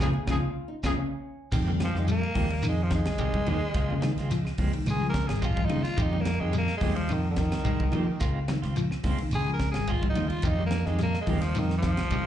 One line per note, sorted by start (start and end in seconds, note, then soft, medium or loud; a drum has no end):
0.00 0.08 C3 medium
0.00 0.07 C#3 medium
0.00 0.08 G#3 loud
0.00 0.11 G#4 loud
0.00 0.07 G#4 medium
0.00 kick medium
0.00 snare medium
0.00 low conga loud
0.00 shekere loud
0.13 0.39 G#4 loud
0.27 0.37 C#2 medium
0.27 0.36 C3 medium
0.27 0.36 C#3 medium
0.27 0.34 C#3 medium
0.27 0.36 F3 medium
0.27 0.35 G#3 medium
0.27 0.35 C4 medium
0.27 0.36 C#4 medium
0.27 0.37 G#4 medium
0.27 kick medium
0.27 snare medium
0.27 low conga medium
0.27 claves loud
0.27 shekere medium
0.40 0.69 F4 medium
0.68 0.74 D#4 medium
0.83 0.93 C#2 loud
0.83 0.92 C3 medium
0.83 0.92 C#3 loud
0.83 0.91 C#3 loud
0.83 0.92 F3 loud
0.83 0.92 G#3 medium
0.83 0.92 C4 medium
0.83 0.92 C#4 medium
0.83 0.92 G#4 loud
0.83 kick medium
0.83 snare medium
0.83 low conga loud
0.83 claves medium
0.83 shekere medium
0.90 0.96 D#4 soft
0.97 1.49 C#4 medium
1.52 1.91 F2 loud
1.52 1.70 D#3 medium
1.52 1.61 D#3 medium
1.52 1.70 G#3 medium
1.52 1.70 C4 medium
1.52 1.70 G4 loud
1.52 kick medium
1.52 crash loud
1.52 shekere loud
1.68 1.83 G3 medium
1.68 low conga medium
1.79 muted clean electric guitar stroke soft
1.79 snare medium
1.79 ride bell medium
1.79 high conga loud
1.79 claves medium
1.79 shekere soft
1.83 2.00 F3 medium
1.94 2.20 F2 medium
1.94 2.02 D#3 medium
1.94 2.06 G#3 medium
1.94 2.07 C4 medium
1.94 2.07 G4 medium
1.94 snare soft
1.94 high conga medium
1.99 2.09 G#3 medium
2.08 2.23 G3 medium
2.08 2.64 A#3 loud
2.08 muted clean electric guitar stroke soft
2.08 ride bell medium
2.08 shekere loud
2.22 muted clean electric guitar stroke soft
2.22 claves medium
2.34 2.61 D#2 medium
2.34 2.50 D#3 medium
2.34 2.45 F3 medium
2.34 2.50 G#3 medium
2.34 2.49 C4 medium
2.34 2.49 G4 medium
2.34 kick medium
2.34 open hi-hat medium
2.34 high conga medium
2.34 low conga medium
2.34 shekere soft
2.50 2.58 G3 medium
2.50 muted clean electric guitar stroke soft
2.50 ride bell soft
2.63 3.03 F2 loud
2.63 2.78 D#3 loud
2.63 ride bell medium
2.63 claves medium
2.63 shekere medium
2.68 2.84 G#3 medium
2.78 muted clean electric guitar stroke soft
2.82 2.93 F3 medium
2.91 3.07 D#3 medium
2.91 muted clean electric guitar stroke soft
2.91 kick medium
2.91 snare medium
2.91 ride bell soft
2.91 shekere soft
2.95 4.57 G#3 loud
3.06 3.44 C2 medium
3.06 muted clean electric guitar stroke soft
3.06 snare medium
3.06 ride bell medium
3.06 claves medium
3.18 3.37 D#3 medium
3.18 3.35 G3 medium
3.18 3.37 G#3 medium
3.18 3.37 C4 medium
3.18 3.37 G4 loud
3.18 kick medium
3.18 ride bell medium
3.18 shekere medium
3.34 kick medium
3.34 high conga medium
3.46 3.61 D#2 medium
3.46 3.62 D#3 medium
3.46 3.63 D#3 medium
3.46 3.62 G#3 medium
3.46 3.61 C4 medium
3.46 3.61 G4 medium
3.46 ride bell medium
3.46 high conga loud
3.46 low conga medium
3.46 claves medium
3.46 shekere soft
3.62 muted clean electric guitar stroke medium
3.74 4.14 C#2 loud
3.74 3.93 F3 medium
3.74 3.93 G#3 medium
3.74 3.93 C4 medium
3.74 3.93 F4 loud
3.74 kick loud
3.74 snare soft
3.74 ride bell medium
3.74 shekere medium
3.90 3.98 C#3 medium
3.90 low conga medium
4.02 4.18 D#3 medium
4.02 muted clean electric guitar stroke medium
4.02 snare medium
4.02 ride bell soft
4.02 high conga loud
4.02 claves medium
4.02 shekere soft
4.18 4.44 C#2 medium
4.18 4.30 G#3 medium
4.18 4.30 C4 medium
4.18 4.30 F4 medium
4.18 snare soft
4.18 ride bell medium
4.31 4.47 F3 medium
4.31 muted clean electric guitar stroke medium
4.31 snare soft
4.31 ride bell medium
4.31 shekere medium
4.45 muted clean electric guitar stroke medium
4.45 snare soft
4.45 claves medium
4.58 4.84 C2 medium
4.58 4.74 F3 loud
4.58 4.73 G#3 medium
4.58 4.73 C4 loud
4.58 muted clean electric guitar stroke loud
4.58 kick medium
4.58 open hi-hat medium
4.58 high conga medium
4.58 low conga medium
4.58 shekere soft
4.73 4.89 D#3 medium
4.73 muted clean electric guitar stroke soft
4.73 ride bell medium
4.86 5.26 C#2 loud
4.86 ride bell medium
4.86 high conga medium
4.86 claves medium
4.86 shekere medium
4.90 5.07 G#4 loud
5.01 5.17 F3 medium
5.01 muted clean electric guitar stroke soft
5.09 5.29 A#4 medium
5.14 kick medium
5.14 snare medium
5.14 ride bell medium
5.14 shekere soft
5.27 5.67 G#1 loud
5.27 5.44 G3 medium
5.27 5.47 G#4 medium
5.27 muted clean electric guitar stroke medium
5.27 snare medium
5.27 ride bell soft
5.27 claves medium
5.42 5.60 F3 medium
5.42 5.60 G#3 medium
5.42 5.60 C4 medium
5.42 5.60 F4 loud
5.42 5.66 F4 loud
5.42 kick medium
5.42 ride bell medium
5.42 shekere medium
5.57 5.64 F3 medium
5.57 kick medium
5.57 high conga medium
5.65 5.84 D#4 loud
5.69 5.84 C#3 medium
5.69 5.85 D#3 medium
5.69 5.85 F3 medium
5.69 5.84 G#3 medium
5.69 5.84 C4 medium
5.69 5.84 F4 medium
5.69 ride bell medium
5.69 high conga loud
5.69 low conga medium
5.69 claves medium
5.69 shekere soft
5.83 6.04 F4 loud
5.83 muted clean electric guitar stroke medium
5.83 snare soft
5.83 ride bell medium
5.97 6.37 F2 loud
5.97 6.15 D#3 medium
5.97 6.06 D#3 medium
5.97 6.15 G#3 medium
5.97 6.16 G4 medium
5.97 muted clean electric guitar stroke medium
5.97 kick loud
5.97 ride bell medium
5.97 shekere loud
6.02 6.23 D#4 medium
6.13 6.28 G3 medium
6.13 low conga medium
6.21 6.42 A#3 loud
6.25 muted clean electric guitar stroke soft
6.25 snare medium
6.25 ride bell medium
6.25 high conga loud
6.25 claves medium
6.25 shekere soft
6.40 6.66 F2 medium
6.40 6.47 D#3 medium
6.40 6.56 G#3 loud
6.40 6.53 G#3 medium
6.40 6.54 C4 medium
6.40 6.53 G4 medium
6.53 6.69 G3 medium
6.53 muted clean electric guitar stroke soft
6.53 ride bell medium
6.53 shekere medium
6.58 6.74 A#3 loud
6.68 muted clean electric guitar stroke soft
6.68 snare soft
6.68 claves medium
6.77 6.96 G#3 loud
6.77 open hi-hat medium
6.81 7.07 D#2 medium
6.81 6.97 D#3 medium
6.81 6.90 F3 medium
6.81 6.96 G#3 medium
6.81 6.96 C4 medium
6.81 6.96 G4 medium
6.81 kick medium
6.81 high conga medium
6.81 low conga medium
6.81 shekere soft
6.95 7.15 F3 medium
6.95 7.04 G3 medium
6.95 muted clean electric guitar stroke soft
6.95 ride bell medium
7.09 7.49 F2 loud
7.09 7.25 D#3 loud
7.09 ride bell medium
7.09 high conga medium
7.09 claves medium
7.09 shekere medium
7.13 7.29 D#3 loud
7.25 muted clean electric guitar stroke soft
7.31 8.38 D#3 loud
7.36 7.53 D#3 loud
7.36 muted clean electric guitar stroke soft
7.36 kick medium
7.36 snare medium
7.36 ride bell medium
7.36 shekere soft
7.52 7.90 C2 medium
7.52 muted clean electric guitar stroke soft
7.52 snare medium
7.52 ride bell medium
7.52 claves medium
7.65 7.83 D#3 medium
7.65 7.80 G3 medium
7.65 7.83 G#3 medium
7.65 7.83 C4 medium
7.65 kick medium
7.65 ride bell medium
7.65 shekere medium
7.80 kick medium
7.80 high conga medium
7.92 8.08 D#3 medium
7.92 8.07 F3 medium
7.92 8.07 G#3 medium
7.92 8.07 C4 medium
7.92 8.07 G4 medium
7.92 ride bell medium
7.92 high conga loud
7.92 low conga medium
7.92 claves medium
7.92 shekere soft
8.08 muted clean electric guitar stroke medium
8.20 8.60 C#2 loud
8.20 8.38 G#3 medium
8.20 8.38 C4 medium
8.20 8.39 F4 loud
8.20 kick medium
8.20 snare soft
8.20 ride bell medium
8.20 shekere loud
8.48 8.64 D#3 medium
8.48 muted clean electric guitar stroke soft
8.48 snare medium
8.48 ride bell soft
8.48 high conga loud
8.48 claves medium
8.48 shekere soft
8.62 8.90 C#2 loud
8.62 8.76 C4 medium
8.62 8.76 F4 medium
8.62 snare soft
8.62 ride bell medium
8.76 8.92 F3 medium
8.76 muted clean electric guitar stroke medium
8.76 ride bell medium
8.76 shekere medium
8.91 muted clean electric guitar stroke medium
8.91 snare soft
8.91 claves medium
9.03 9.30 C2 medium
9.03 9.19 G#3 loud
9.03 9.19 C4 loud
9.03 9.18 F4 loud
9.03 kick medium
9.03 snare soft
9.03 open hi-hat medium
9.03 high conga medium
9.03 low conga medium
9.03 shekere soft
9.18 9.35 D#3 medium
9.18 muted clean electric guitar stroke soft
9.18 ride bell medium
9.31 9.72 C#2 loud
9.31 ride bell medium
9.31 claves medium
9.31 shekere medium
9.35 9.52 G#4 loud
9.47 9.63 F3 medium
9.47 muted clean electric guitar stroke soft
9.54 9.70 A#4 medium
9.59 muted clean electric guitar stroke soft
9.59 kick medium
9.59 snare medium
9.59 ride bell medium
9.59 shekere soft
9.71 10.12 G#1 loud
9.71 9.93 G#4 medium
9.71 snare medium
9.71 ride bell medium
9.75 9.91 G3 medium
9.75 muted clean electric guitar stroke soft
9.75 claves medium
9.87 10.06 G#3 medium
9.87 10.06 C4 medium
9.87 10.07 F4 loud
9.87 10.08 F4 medium
9.87 kick medium
9.87 ride bell medium
9.87 shekere medium
10.03 10.10 F3 medium
10.03 kick medium
10.03 high conga medium
10.09 10.30 D#4 loud
10.15 10.30 D#2 medium
10.15 10.31 D#3 medium
10.15 10.31 G#3 medium
10.15 10.30 C4 medium
10.15 10.30 F4 medium
10.15 ride bell medium
10.15 high conga loud
10.15 low conga medium
10.15 claves medium
10.15 shekere soft
10.28 10.49 F4 medium
10.28 muted clean electric guitar stroke soft
10.28 ride bell medium
10.42 10.83 F2 medium
10.42 10.52 D#3 medium
10.42 10.62 D#3 medium
10.42 10.62 G#3 medium
10.42 10.62 C4 medium
10.42 10.62 G4 medium
10.42 kick loud
10.42 ride bell medium
10.42 shekere loud
10.48 10.64 D#4 loud
10.59 10.74 G3 medium
10.66 10.87 A#3 loud
10.71 muted clean electric guitar stroke soft
10.71 snare medium
10.71 ride bell medium
10.71 high conga loud
10.71 claves medium
10.71 shekere soft
10.86 11.12 F2 loud
10.86 10.94 D#3 medium
10.86 11.02 G#3 medium
10.86 11.00 G#3 soft
10.86 10.99 C4 medium
10.86 11.00 G4 medium
10.86 snare soft
10.99 11.15 G3 medium
10.99 11.19 A#3 loud
10.99 muted clean electric guitar stroke soft
10.99 snare soft
10.99 ride bell medium
10.99 shekere medium
11.14 muted clean electric guitar stroke soft
11.14 snare soft
11.14 claves medium
11.21 11.42 G#3 medium
11.27 11.53 D#2 loud
11.27 11.43 D#3 medium
11.27 11.35 F3 medium
11.27 11.43 G#3 medium
11.27 11.43 C4 medium
11.27 11.42 G4 medium
11.27 kick medium
11.27 open hi-hat medium
11.27 high conga medium
11.27 low conga medium
11.27 shekere soft
11.40 11.61 F3 medium
11.40 11.50 G3 medium
11.40 muted clean electric guitar stroke soft
11.40 snare soft
11.40 ride bell medium
11.55 11.95 F2 loud
11.55 11.71 D#3 loud
11.55 ride bell medium
11.55 high conga medium
11.55 claves medium
11.55 shekere medium
11.59 11.76 D#3 loud
11.70 muted clean electric guitar stroke soft
11.70 snare soft
11.78 12.26 F3 loud
11.83 11.98 D#3 medium
11.83 muted clean electric guitar stroke soft
11.83 kick medium
11.83 snare medium
11.83 ride bell soft
11.83 shekere soft
11.97 12.26 C2 medium
11.97 muted clean electric guitar stroke soft
11.97 snare medium
11.97 ride bell medium
11.97 claves medium
12.10 12.26 D#3 medium
12.10 12.26 G3 medium
12.10 12.26 G#3 medium
12.10 12.26 C4 loud
12.10 12.26 G4 medium
12.10 kick medium
12.10 ride bell medium
12.10 shekere medium